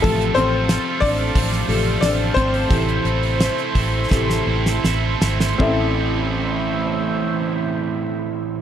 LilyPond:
<<
  \new Staff \with { instrumentName = "Analog synth pad" } { \time 4/4 \key a \minor \tempo 4 = 83 << { <f'' a''>1 | <e'' c'''>1 | <a, a e' c'' e''>1 | } \\ { <a' c''>1~ | <a' c''>1 | r1 | } >> }
  \new Staff \with { instrumentName = "Overdriven electric guitar" } { \time 4/4 \key a \minor <a, f a c' f' a'>8 <a c' f' a'>8 <a c' f' a'>8 <a c' f' a'>8 <a, f a c' f' a'>8 <a c' f' a'>8 <a c' f' a'>8 <a c' f' a'>8 | <a, e a c' e' a'>8 <a c' e' a'>8 <a c' e' a'>8 <a c' e' a'>8 <a, e a c' e' a'>8 <a c' e' a'>8 <a c' e' a'>8 <a c' e' a'>8 | <a, e a c' e' a'>1 | }
  \new Staff \with { instrumentName = "Grand piano" } { \time 4/4 \key a \minor a'8 <c' c''>4 <d' d''>4 r8 <d' d''>8 <c' c''>8~ | <c' c''>2. r4 | <c' e' a' e''>1 | }
  \new Staff \with { instrumentName = "Grand piano" } { \clef bass \time 4/4 \key a \minor <c f a>2~ <c f a>8 <c f a>8 r4 | <c e a>8 r4. <c e a>8 r4. | a,,1 | }
  \new Staff \with { instrumentName = "Fingered electric bass" } { \clef bass \time 4/4 \key a \minor a,,8 a,,8. r16 a,,8 a,,8 a,,8 a,,8 gis,,8 | a,,8 a,,8. r16 a,,8 a,,8 a,,8 a,,8 gis,,8 | a,,1 | }
  \new DrumStaff \with { instrumentName = "Drums" } \drummode { \time 4/4 <hho hhp bd>16 hhp16 <hho hhp>8 <hho hhp sn>8 <hho hhp bd>8 <hho hhp bd>16 sn16 <hho hhp>8 <hho hhp sn>8 <hho hhp bd>16 hho16 | <hho hhp bd>16 hhp16 <hho hhp>16 hho16 <hho hhp sn>16 hhp16 <hho hhp bd>8 <bd sn>16 sn8 sn16 sn8 sn16 sn16 | bd4 r4 r4 r4 | }
>>